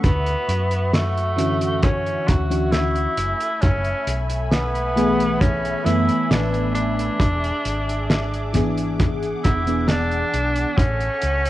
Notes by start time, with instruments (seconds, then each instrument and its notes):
Already playing: analog synth pad C#6
0.03 fingered electric bass D2, tenor saxophone B3, analog synth pad F#4 E5, kick, closed hi-hat
0.26 closed hi-hat
0.48 fingered electric bass F#2, closed hi-hat
0.71 closed hi-hat
0.93 tenor saxophone A3, snare, closed hi-hat
1.17 closed hi-hat
1.36 fm electric piano D3 E3 C#4 F#4, closed hi-hat
1.61 closed hi-hat
1.82 tenor saxophone C#4, kick, closed hi-hat
2.06 closed hi-hat
2.28 fingered electric bass D2, tenor saxophone F#4, kick, closed hi-hat
2.50 fm electric piano E3 C#4 D4 F#4, closed hi-hat
2.72 tenor saxophone E4, snare, closed hi-hat
2.96 closed hi-hat
3.17 fingered electric bass F#1, analog synth pad A3 G#5 B5, closed hi-hat
3.40 closed hi-hat
3.62 fingered electric bass F#1, tenor saxophone C#4, kick, closed hi-hat
3.85 closed hi-hat
4.07 fingered electric bass B1, closed hi-hat
4.30 closed hi-hat
4.51 tenor saxophone B3, snare, closed hi-hat
4.75 closed hi-hat
4.96 fm electric piano E3 A3 B3 G#4, closed hi-hat
5.20 closed hi-hat
5.41 tenor saxophone C#4, kick, closed hi-hat
5.65 closed hi-hat
5.84 fingered electric bass F#2, fm electric piano E3 A3 B3 B4, tenor saxophone E4, snare, closed hi-hat
6.09 muted fingered electric bass stroke, closed hi-hat
6.30 fingered electric bass A1, tenor saxophone D4, snare, closed hi-hat
6.54 closed hi-hat
6.75 tenor saxophone D4, closed hi-hat
6.99 closed hi-hat
7.20 fingered electric bass E1, analog synth pad G#4 D6, kick, closed hi-hat
7.44 closed hi-hat
7.65 fingered electric bass G#1, closed hi-hat
7.89 closed hi-hat
8.10 snare, closed hi-hat
8.34 closed hi-hat
8.53 fm electric piano E3 B3 D4 G#4, kick, closed hi-hat
8.77 closed hi-hat
8.99 analog synth pad F#5, kick, closed hi-hat
9.22 closed hi-hat
9.44 fingered electric bass E1, tenor saxophone E4, kick, closed hi-hat
9.66 fm electric piano E3 B3 D4 G#4, closed hi-hat
9.88 tenor saxophone D4, snare, closed hi-hat
10.12 closed hi-hat
10.34 fingered electric bass B1, closed hi-hat
10.56 closed hi-hat
10.78 fingered electric bass A1, tenor saxophone C#4, analog synth pad A4 C#6, kick, closed hi-hat
11.01 closed hi-hat
11.22 fingered electric bass C#2, closed hi-hat
11.46 closed hi-hat